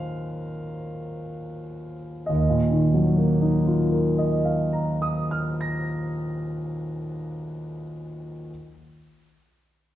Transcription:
Already playing: F#3 A#3 D#4 F4 A#4 F5
2.26 D#2 D#5
2.49 A#2
2.71 D#3
2.94 F#3
3.17 A#3
3.41 D#4
3.67 F4
3.92 A#4
4.18 D#5
4.45 F5
4.73 A#5
5.02 D#6
5.31 F6
5.61 A#6

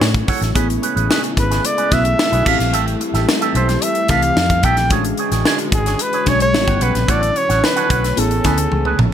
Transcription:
Already playing: C#3 F#3 A3 C#4 E4 F#4 C#5
0.01 A2, muted clean electric guitar stroke, snare
0.14 muted clean electric guitar stroke, kick, closed hi-hat
0.27 A4 C#5 F#5, kick, open hi-hat
0.41 A1, muted clean electric guitar stroke, snare, closed hi-hat
0.54 A1 C#3 G#3 A3 B3 C#4 E4 G#4 B4, kick, closed hi-hat
0.69 muted clean electric guitar stroke, closed hi-hat
0.82 C#4 G#4 B4, closed hi-hat
0.96 A1 C#4 G#4 B4, closed hi-hat
1.10 C#4 G#4 B4, snare
1.23 muted clean electric guitar stroke, closed hi-hat
1.37 G#1 B4, muted clean electric guitar stroke, kick, closed hi-hat
1.50 C#4 G#4 B4, snare, closed hi-hat
1.64 D5, muted clean electric guitar stroke, closed hi-hat
1.77 C#4 G#4 B4, closed hi-hat
1.91 B1 B3 C#4 E4 F#4 G#4 B4 E5, kick, snare, closed hi-hat
2.04 muted clean electric guitar stroke, closed hi-hat
2.18 muted clean electric guitar stroke, snare
2.32 B1 C#4 G#4 B4, closed hi-hat
2.45 A1 E3 G3 A3 C4 E4 G4 A4 E5 F5, kick, crash
2.59 A#1, muted clean electric guitar stroke, snare, closed hi-hat
2.73 A1 G4 A4 E5, closed hi-hat
2.86 muted clean electric guitar stroke, closed hi-hat
3.01 muted clean electric guitar stroke, closed hi-hat
3.14 A1 G4 A4 E5, snare, closed hi-hat
3.28 muted clean electric guitar stroke, snare
3.41 G4 A4 E5, closed hi-hat
3.55 B1 G4 A4 C5 E5, closed hi-hat
3.69 muted clean electric guitar stroke, snare, closed hi-hat
3.82 E5, muted clean electric guitar stroke, closed hi-hat
3.95 muted clean electric guitar stroke, closed hi-hat
4.08 C2 E3 A3 C4 G4 A4 E5 F5, kick, snare, closed hi-hat
4.22 muted clean electric guitar stroke, closed hi-hat
4.36 F2, muted clean electric guitar stroke, snare
4.50 muted clean electric guitar stroke, kick, closed hi-hat
4.63 A#1 G4 A4 E5 G5, kick, closed hi-hat
4.77 muted clean electric guitar stroke, snare, closed hi-hat
4.90 A1 D3 G#3 C#4 D4 F#4 G#4 C#5, kick, closed hi-hat
5.05 muted clean electric guitar stroke, closed hi-hat
5.17 D4 G#4 C#5, closed hi-hat
5.32 A1 D4 G#4 C#5, snare, closed hi-hat
5.45 D4 G#4 C#5, snare
5.59 muted clean electric guitar stroke, closed hi-hat
5.72 G#1 G#4, muted clean electric guitar stroke, kick, closed hi-hat
5.86 D4 G#4 C#5, snare, closed hi-hat
5.99 B4, muted clean electric guitar stroke, closed hi-hat
6.13 D4 G#4 C#5, closed hi-hat
6.26 B1 G#3 C#4 D4 G#4 C#5, kick, snare, closed hi-hat
6.40 C#5, muted clean electric guitar stroke, closed hi-hat
6.53 A1 C#3 G3 A3 B3 C#4 E4, muted clean electric guitar stroke, snare
6.61 F#4
6.67 G1 G4 C#5 F#5, kick, closed hi-hat
6.81 B1 G4 B4 C#5 F#5, closed hi-hat
6.95 A#1, muted clean electric guitar stroke, snare, closed hi-hat
7.08 A1 D3 F#3 A3 C#4 E4 F#4 A4 C#5 D5 F#5, kick, closed hi-hat
7.22 muted clean electric guitar stroke, closed hi-hat
7.36 C#5, muted clean electric guitar stroke, closed hi-hat
7.49 A1 A4 C#5 F#5, snare, closed hi-hat
7.63 B4, muted clean electric guitar stroke, snare
7.76 A4 C#5 F#5, closed hi-hat
7.90 B1 A4 C#5 F#5, kick, closed hi-hat
8.04 muted clean electric guitar stroke, snare, closed hi-hat
8.16 A1 A3 B3 C#4 E4 G#4 A4, muted clean electric guitar stroke, closed hi-hat
8.31 muted clean electric guitar stroke, closed hi-hat
8.44 D2 B3 C#4 E4 G#4 B4 G#5, kick, snare, closed hi-hat
8.58 muted clean electric guitar stroke, closed hi-hat
8.72 C#2, muted clean electric guitar stroke, high tom
8.85 C#4 G#4 B4, mid tom
8.99 A#1, mid tom

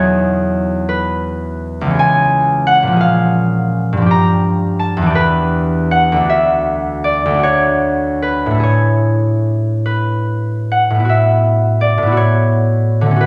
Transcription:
Already playing: E2 F#3 D#4 G#4 C#5 D#5 F#5
0.89 B4
1.81 C#2
1.86 E3
1.90 C#4
1.95 G#4
1.99 G#5
2.67 F#5
2.83 A#2
2.87 F3
2.92 C#4
2.96 G#4
3.01 F5
3.93 G2
3.97 F3
4.02 D4
4.06 G4
4.11 A#5
4.79 A5
4.97 E2
5.02 E3
5.06 D4 G4
5.15 B4
5.91 F#5
6.12 D2
6.16 A3
6.20 D4
6.25 F#4
6.29 E5
7.04 D5
7.25 D2
7.30 A3
7.34 D4
7.39 F#4
7.43 C#5
8.22 B4
8.46 A2
8.51 A3
8.55 E4
8.60 G#4 C#5
9.86 B4
10.72 F#5
10.90 A2
10.95 B3
11.00 E4
11.05 F#4
11.09 E5
11.81 D5
11.98 A2
12.03 B3
12.07 E4
12.12 F#4
12.17 C#5
13.01 D3
13.06 A3
13.11 C#4
13.16 F#4
13.21 B4

